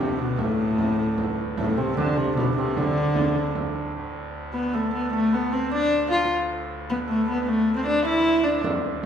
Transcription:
Already playing: D2 A2 C3 A3 C4 D4 F4 G4
0.18 B2 B3
0.38 A2 A3, frame drum
0.78 frame drum
1.18 B3, frame drum
1.57 A2 A3, frame drum
1.77 C3 C4
1.97 D3 D4, frame drum
2.16 C3 C4
2.37 B2 B3, frame drum
2.57 C3 C4
2.77 D3 D4, frame drum
3.15 frame drum
3.55 frame drum
3.75 frame drum
3.94 D2 A2
4.53 B3 B4
4.73 A3 A4
4.94 B3
5.13 A3 A4
5.32 B3 B4
5.53 C4 C5
5.71 D4 D5
6.10 F4 F5
6.90 B3 B4
7.08 A3 A4
7.28 B3 B4
7.42 B3 B4
7.47 A3 A4
7.76 C4 C5
7.86 D4 D5
8.05 E4 E5
8.44 D4 D5
8.64 D2 A2, frame drum
8.84 frame drum

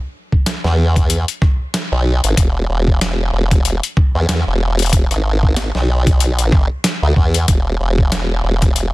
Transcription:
0.32 kick
0.46 snare, closed hi-hat
0.64 E2, snare
0.96 kick, closed hi-hat
1.10 closed hi-hat
1.28 closed hi-hat
1.42 kick, cross-stick
1.74 snare, closed hi-hat
1.92 B1
2.24 G#1, closed hi-hat
2.37 E1, kick, closed hi-hat
2.69 E1
2.88 kick
3.01 snare, closed hi-hat
3.33 E1
3.51 kick, closed hi-hat
3.65 closed hi-hat
3.83 closed hi-hat
3.97 kick
4.15 E2
4.29 E2, snare, closed hi-hat
4.47 E1
4.79 closed hi-hat
4.82 closed hi-hat
4.86 closed hi-hat
4.89 kick, closed hi-hat
4.93 closed hi-hat
5.11 G#1, cross-stick, closed hi-hat
5.43 kick
5.57 snare, closed hi-hat
5.75 B1, snare
6.07 kick, closed hi-hat
6.20 closed hi-hat
6.39 closed hi-hat
6.52 kick, cross-stick
6.84 snare, closed hi-hat
7.02 D2
7.16 E2, kick
7.34 closed hi-hat
7.48 E1, kick, closed hi-hat
7.80 E1
7.98 kick
8.12 snare, closed hi-hat
8.44 E1
8.62 kick, closed hi-hat
8.76 closed hi-hat

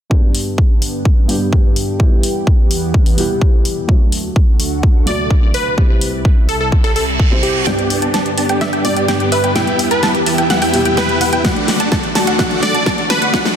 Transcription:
0.10 G2 D3 G3 B3 D4 G4, kick
0.35 open hi-hat
0.58 kick
0.82 open hi-hat
1.05 kick
1.28 G2 G3 B3 D4 G4, open hi-hat
1.53 kick
1.76 open hi-hat
1.99 E2 E3 G3 B3 E4 G4, kick
2.23 open hi-hat
2.47 kick
2.71 open hi-hat
2.94 kick
3.06 open hi-hat
3.17 G3 B3 E4 G4, open hi-hat
3.41 kick
3.65 open hi-hat
3.88 D2 D3 F#3 A3 D4 F#4, kick
4.12 open hi-hat
4.36 kick
4.60 open hi-hat
4.83 kick
5.06 F#3 A3 D4 F#4 D5, open hi-hat
5.30 kick
5.54 B4, open hi-hat
5.77 C2 C3 G3 C4 E4 G4, kick
6.01 open hi-hat
6.25 kick
6.49 A4, open hi-hat
6.61 A4
6.72 kick, reverse cymbal
6.84 A4, open hi-hat
6.96 A4, open hi-hat
7.19 kick
7.31 C3 G3 C4 E4 C5
7.43 G4, open hi-hat
7.65 G2 D3 G3 B3 D4 G4 D5 G5, snare, closed hi-hat, riser
7.79 closed hi-hat
7.90 open hi-hat
8.02 B3 D4 G4 D5 A5, closed hi-hat
8.14 B3 D4 G4 D5 A5, snare, closed hi-hat
8.26 closed hi-hat
8.38 B3 D4 G4 D5 A5, open hi-hat
8.49 B3 D4 G4 D5 G5, closed hi-hat
8.61 B3 D4 G4 D5 E5, snare, closed hi-hat
8.73 B3 D4 G4 D5 G5, closed hi-hat
8.83 G2 G3 B3 D4 G4 D5, open hi-hat
8.97 B3 D4 G4 D5 G5, closed hi-hat
9.08 B3 D4 G4 D5 G5, snare, closed hi-hat
9.20 closed hi-hat
9.32 B3 D4 G4 B4 D5 E5, open hi-hat
9.44 B3 D4 G4 D5 G5, closed hi-hat
9.54 E2 E3 G3 B3 E4 G4 E5 G5, snare, closed hi-hat
9.67 closed hi-hat
9.79 open hi-hat
9.91 B3 E4 G4 B4 E5 A5, closed hi-hat
10.03 B3 E4 G4 E5 A5, snare, closed hi-hat
10.15 closed hi-hat
10.26 B3 E4 G4 E5 A5, open hi-hat
10.38 B3 E4 G4 E5 G5, closed hi-hat
10.50 B3 E4 G4 E5 F#5, snare, closed hi-hat
10.62 B3 E4 G4 E5 G5, open hi-hat
10.72 G3 B3 E4 G4, open hi-hat
10.85 B3 E4 G4 E5 G5, closed hi-hat
10.97 B3 E4 G4 B4 E5 G5, snare, closed hi-hat
11.09 closed hi-hat
11.21 B3 E4 G4 E5 F#5, open hi-hat
11.33 B3 E4 G4 E5 G5, closed hi-hat
11.43 D2 D3 F#3 A3 D4 F#4 D5 F#5, kick, snare, closed hi-hat
11.56 closed hi-hat
11.68 snare, open hi-hat
11.80 A3 D4 F#4 D5 A5, closed hi-hat
11.92 A3 D4 F#4 D5 A5, kick, snare, closed hi-hat
12.04 closed hi-hat
12.15 A3 D4 F#4 D5 A5, snare, open hi-hat
12.27 A3 D4 F#4 D5 F#5, closed hi-hat
12.38 F#3 A3 D4 F#4 D5 F#5, kick, snare, closed hi-hat
12.51 closed hi-hat
12.63 D5, snare, open hi-hat
12.74 A3 D4 F#4 D5 A5, closed hi-hat
12.86 A3 D4 F#4 D5 A5, kick, snare, closed hi-hat
12.98 closed hi-hat
13.10 A3 D4 F#4 B4 D5 A5, snare, open hi-hat
13.22 A3 D4 F#4 D5 F#5, closed hi-hat
13.32 C2 C3 F#3 A3 D4 E4 F#4 D5 F#5, kick, snare, closed hi-hat
13.45 snare, closed hi-hat

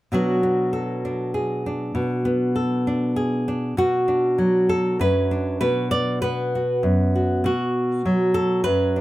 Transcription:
0.12 B2 F#3 B3 D4 F#4
0.43 B3
0.73 A4
1.05 D4
1.34 G#4
1.66 D4
1.95 B2
2.25 B3
2.56 A4
2.87 D4
3.16 G#4
3.48 D4
3.77 B2 F#4
4.08 D4
4.38 F#3
4.69 A4
4.99 F#2 B4
5.31 D4
5.61 B2 B4
5.91 D5
6.22 B3 B4
6.55 F#4
6.83 F#2
7.15 F#4
7.44 B2 F#4
8.05 F#3
8.34 A4
8.64 F#2 B4
8.96 D4

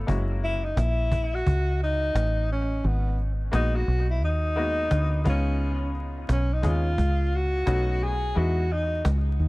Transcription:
0.07 F#1 G#3 A#3 C#4 E4 F#4, cajon bass
0.43 E4, cajon slap
0.64 D#4
0.77 A#1 E4, cajon slap
1.12 cajon bass
1.35 F#4
1.47 C#2, cajon bass
1.82 D#4, cajon slap
2.15 A1, cajon slap
2.50 C#4, cajon slap
2.84 G#1 B3, cajon slap
3.18 cajon slap
3.51 A#1 G#3 A#3 B3 D#4 F#4, cajon slap
3.75 F#4
3.88 B1, cajon slap
4.10 E4
4.23 D#2 D#4, cajon slap
4.55 G#3 A#3 B3 D#4 F#4, cajon slap
4.91 D2, cajon slap
5.24 C#2 G#3 B3 C#4 D#4 F4, cajon bass
5.29 C#4
5.61 cajon slap
5.95 cajon slap
6.29 B1 C#4, cajon slap
6.53 D#4
6.62 D#2 G#3 B3 C#4 D#4 G#4, cajon bass
6.66 F4
6.98 C#2, cajon bass
7.32 F#4, cajon slap
7.66 B1 A3 B3 C#4 D#4 F#4, cajon slap
8.01 G#4, cajon slap
8.35 E2 G#3 B3 D#4 E4 F#4, cajon slap
8.71 D#4, cajon slap
9.05 C#2, cajon slap
9.39 D#2, cajon slap

